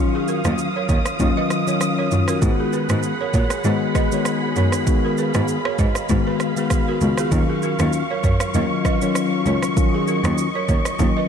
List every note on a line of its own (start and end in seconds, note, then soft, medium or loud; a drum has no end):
0.00 0.40 D#3 medium
0.00 0.41 F#3 medium
0.00 2.38 F#3 medium
0.00 0.41 C#4 medium
0.00 0.41 F4 loud
0.00 2.38 F5 medium
0.00 2.39 D#6 medium
0.15 0.24 F4 medium
0.15 0.23 G#4 medium
0.28 0.40 F#4 medium
0.28 0.39 A#4 medium
0.28 shaker medium
0.44 0.53 D#2 loud
0.44 0.67 D#3 medium
0.44 0.67 F#3 medium
0.44 0.67 C#4 medium
0.44 0.67 F4 medium
0.44 cross-stick medium
0.44 shaker medium
0.58 shaker medium
0.76 0.85 A#4 medium
0.76 0.84 C#5 medium
0.89 0.97 D#2 medium
0.89 1.01 A#4 medium
0.89 1.00 C#5 medium
0.89 kick medium
0.89 shaker medium
1.06 cross-stick medium
1.06 shaker medium
1.19 1.28 D#2 loud
1.19 1.63 D#3 medium
1.19 1.63 F#3 medium
1.19 1.63 C#4 medium
1.19 1.63 F4 loud
1.19 kick medium
1.19 shaker medium
1.37 1.46 B4 medium
1.37 1.46 D#5 medium
1.50 cross-stick medium
1.50 shaker medium
1.67 2.08 D#3 medium
1.67 2.08 F#3 medium
1.67 2.08 C#4 medium
1.67 2.08 F4 medium
1.67 1.77 A#4 medium
1.67 1.76 C#5 medium
1.67 shaker medium
1.81 cross-stick medium
1.81 shaker medium
1.98 2.07 A#4 medium
1.98 2.07 C#5 medium
2.11 2.19 F#2 medium
2.11 2.40 D#3 medium
2.11 2.40 F#3 medium
2.11 2.40 C#4 medium
2.11 2.40 F4 medium
2.11 shaker medium
2.28 2.38 F#4 medium
2.28 2.37 A#4 medium
2.28 cross-stick medium
2.28 shaker medium
2.42 2.50 G#2 medium
2.42 2.85 D#3 medium
2.42 2.86 G#3 medium
2.42 2.86 B3 medium
2.42 2.86 F#4 loud
2.42 7.28 G#4 medium
2.42 4.84 F#5 medium
2.42 7.28 B5 medium
2.42 kick loud
2.42 shaker medium
2.59 2.68 F4 medium
2.59 2.68 G#4 medium
2.73 2.84 G#4 medium
2.73 2.84 B4 medium
2.73 shaker medium
2.89 2.97 G#2 medium
2.89 3.12 D#3 medium
2.89 3.12 G#3 medium
2.89 3.12 B3 medium
2.89 3.12 F#4 medium
2.89 cross-stick medium
2.89 shaker medium
3.03 shaker medium
3.21 3.30 A#4 medium
3.21 3.29 C#5 medium
3.34 3.42 A#2 medium
3.34 3.46 A#4 medium
3.34 3.45 C#5 medium
3.34 kick medium
3.34 shaker medium
3.50 cross-stick medium
3.50 shaker medium
3.64 3.72 G#2 loud
3.64 4.08 D#3 medium
3.64 4.08 G#3 medium
3.64 4.08 B3 medium
3.64 4.08 F#4 medium
3.64 3.76 B4 medium
3.64 3.76 D#5 medium
3.64 shaker medium
3.95 4.07 B4 medium
3.95 4.06 D#5 medium
3.95 kick medium
3.95 cross-stick medium
3.95 shaker medium
4.12 4.53 D#3 medium
4.12 4.53 G#3 medium
4.12 4.53 B3 medium
4.12 4.53 F#4 medium
4.12 4.22 A#4 medium
4.12 4.21 C#5 medium
4.12 shaker medium
4.25 cross-stick medium
4.25 shaker medium
4.56 4.65 F#2 medium
4.56 4.85 D#3 medium
4.56 4.85 G#3 medium
4.56 4.85 B3 medium
4.56 4.85 F#4 medium
4.56 4.68 A#4 medium
4.56 4.67 C#5 medium
4.56 shaker medium
4.72 cross-stick medium
4.72 shaker medium
4.87 5.30 D#3 medium
4.87 5.30 G#3 medium
4.87 5.31 B3 medium
4.87 5.31 F#4 loud
4.87 9.73 F5 medium
4.87 kick loud
4.87 shaker medium
5.05 5.14 F#4 medium
5.05 5.13 A#4 medium
5.18 5.29 G#4 medium
5.18 5.29 B4 medium
5.18 shaker medium
5.34 5.42 G#2 medium
5.34 5.57 D#3 medium
5.34 5.57 G#3 medium
5.34 5.57 B3 medium
5.34 5.57 F#4 medium
5.34 cross-stick medium
5.34 shaker medium
5.48 shaker medium
5.65 5.75 A#4 medium
5.65 5.74 C#5 medium
5.65 cross-stick medium
5.78 5.87 G#2 medium
5.78 5.90 B4 medium
5.78 5.90 D#5 medium
5.78 kick medium
5.78 shaker medium
5.95 cross-stick medium
5.95 shaker medium
6.09 6.17 G#2 loud
6.09 6.53 D#3 medium
6.09 6.53 G#3 medium
6.09 6.53 B3 medium
6.09 6.53 F#4 medium
6.09 kick medium
6.09 shaker medium
6.27 6.36 G#4 medium
6.27 6.35 B4 medium
6.40 cross-stick medium
6.40 shaker medium
6.57 6.98 D#3 medium
6.57 6.98 G#3 medium
6.57 6.98 B3 medium
6.57 6.98 F#4 medium
6.57 6.67 G#4 medium
6.57 6.66 B4 medium
6.57 shaker medium
6.70 kick medium
6.70 cross-stick medium
6.70 shaker medium
6.88 6.97 F#4 medium
6.88 6.97 A#4 medium
7.01 7.09 C#2 medium
7.01 7.30 D#3 medium
7.01 7.30 G#3 medium
7.01 7.30 B3 medium
7.01 7.30 F#4 medium
7.01 shaker medium
7.17 7.28 F4 medium
7.17 7.27 G#4 medium
7.17 cross-stick medium
7.17 shaker medium
7.32 7.40 D#2 loud
7.32 7.75 D#3 medium
7.32 7.75 F#3 medium
7.32 11.28 F#3 medium
7.32 7.75 C#4 medium
7.32 7.75 F4 loud
7.32 11.28 C#6 medium
7.32 kick loud
7.32 shaker medium
7.49 7.58 F4 medium
7.49 7.58 G#4 medium
7.62 7.74 F#4 medium
7.62 7.74 A#4 medium
7.62 shaker medium
7.79 7.87 D#2 medium
7.79 8.01 D#3 medium
7.79 8.01 F#3 medium
7.79 8.02 C#4 medium
7.79 8.02 F4 medium
7.79 cross-stick medium
7.79 shaker medium
7.93 shaker medium
8.10 8.20 A#4 medium
8.10 8.19 C#5 medium
8.23 8.32 F#2 medium
8.23 8.36 A#4 medium
8.23 8.35 C#5 medium
8.23 kick medium
8.23 shaker medium
8.40 cross-stick medium
8.40 shaker medium
8.54 8.62 D#2 loud
8.54 8.98 D#3 medium
8.54 8.98 F#3 medium
8.54 8.98 C#4 medium
8.54 8.98 F4 loud
8.54 8.66 A#4 medium
8.54 8.66 D#5 medium
8.54 shaker medium
8.85 8.97 B4 medium
8.85 8.96 D#5 medium
8.85 kick medium
8.85 cross-stick medium
8.85 shaker medium
9.02 9.43 D#3 medium
9.02 9.43 F#3 medium
9.02 9.43 C#4 medium
9.02 9.43 F4 medium
9.02 9.11 A#4 medium
9.02 9.11 C#5 medium
9.02 shaker medium
9.15 cross-stick medium
9.15 shaker medium
9.46 9.54 C#2 medium
9.46 9.74 D#3 medium
9.46 9.74 F#3 medium
9.46 9.75 C#4 medium
9.46 9.75 F4 medium
9.46 9.58 A#4 medium
9.46 9.57 C#5 medium
9.46 shaker medium
9.62 cross-stick medium
9.62 shaker medium
9.77 10.20 D#3 medium
9.77 10.20 F#3 medium
9.77 10.20 C#4 medium
9.77 10.20 F4 loud
9.77 11.28 D#5 medium
9.77 kick loud
9.77 shaker medium
9.94 10.03 F4 medium
9.94 10.03 G#4 medium
10.08 10.19 F#4 medium
10.08 10.19 A#4 medium
10.08 shaker medium
10.24 10.32 D#2 loud
10.24 10.46 D#3 medium
10.24 10.46 F#3 medium
10.24 10.46 C#4 medium
10.24 10.47 F4 medium
10.24 cross-stick medium
10.24 shaker medium
10.38 shaker medium
10.55 10.64 A#4 medium
10.55 10.64 C#5 medium
10.69 10.77 D#2 medium
10.69 10.80 A#4 medium
10.69 10.80 C#5 medium
10.69 kick medium
10.69 shaker medium
10.85 cross-stick medium
10.85 shaker medium
10.99 11.08 D#2 loud
10.99 11.28 D#3 medium
10.99 11.28 F#3 medium
10.99 11.28 C#4 medium
10.99 11.28 F4 medium
10.99 kick medium
10.99 shaker medium
11.17 11.26 B4 medium
11.17 11.25 D#5 medium